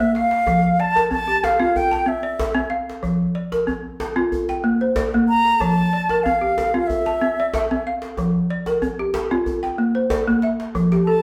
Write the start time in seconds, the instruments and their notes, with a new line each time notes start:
Already playing: balafon C5 D5, flute E5
0.00 balafon A#3, djembe bass
0.15 flute F5, balafon F5, djembe slap
0.31 djembe slap
0.47 balafon F3, djembe slap, djembe tone, djembe bass
0.64 djembe slap
0.80 balafon D5, flute A5
0.95 balafon A#4, djembe slap, djembe tone
1.11 balafon C4, flute A5, djembe slap, djembe bass
1.28 balafon G4
1.44 flute F5, djembe slap, djembe tone
1.60 balafon C4 F4
1.76 flute G5, djembe bass
1.91 balafon A5, djembe slap, djembe tone
2.06 balafon C4, flute E5
2.23 balafon D5
2.40 djembe slap, djembe tone, djembe bass
2.54 balafon C4
2.70 balafon F5, djembe slap
2.90 djembe slap
3.03 balafon F3, djembe slap, djembe tone, djembe bass
3.21 djembe slap
3.35 balafon D5
3.52 balafon A#4, djembe slap, djembe tone
3.67 balafon C4, djembe slap, djembe bass
4.00 djembe slap, djembe tone
4.16 balafon C4 F4
4.32 djembe bass
4.49 balafon G5, djembe slap, djembe tone
4.64 balafon A#3
4.81 balafon C5
4.96 balafon D5, djembe slap, djembe tone, djembe bass
5.14 balafon A#3
5.27 flute A#5, djembe slap
5.45 djembe slap
5.60 balafon F3, flute A5, djembe slap, djembe tone, djembe bass
5.78 djembe slap
5.93 balafon D5
6.09 balafon A#4, djembe slap, djembe tone
6.23 balafon C4, flute F5, djembe slap, djembe bass
6.41 balafon G4
6.58 djembe slap, djembe tone
6.74 balafon C4 F4
6.87 flute E5, djembe bass
7.06 balafon A5, djembe slap, djembe tone
7.21 balafon C4
7.40 balafon D5
7.54 balafon E5, djembe slap, djembe tone, djembe bass
7.71 balafon C4
7.86 balafon F5, djembe slap
8.02 djembe slap
8.17 balafon F3, djembe slap, djembe tone, djembe bass
8.50 balafon D5, djembe slap
8.66 balafon A#4, djembe slap, djembe tone
8.82 balafon C4, djembe bass
8.99 balafon G4
9.14 djembe slap, djembe tone
9.31 balafon C4 F4, djembe slap
9.46 djembe bass
9.63 balafon G5, djembe slap, djembe tone
9.78 balafon A#3
9.95 balafon C5, djembe slap
10.10 balafon D5, djembe slap, djembe tone, djembe bass
10.27 balafon A#3, djembe bass
10.42 balafon E5, djembe slap
10.60 djembe slap
10.75 balafon F3, djembe bass
10.92 balafon G4, djembe slap
11.06 balafon A4, flute A5, djembe slap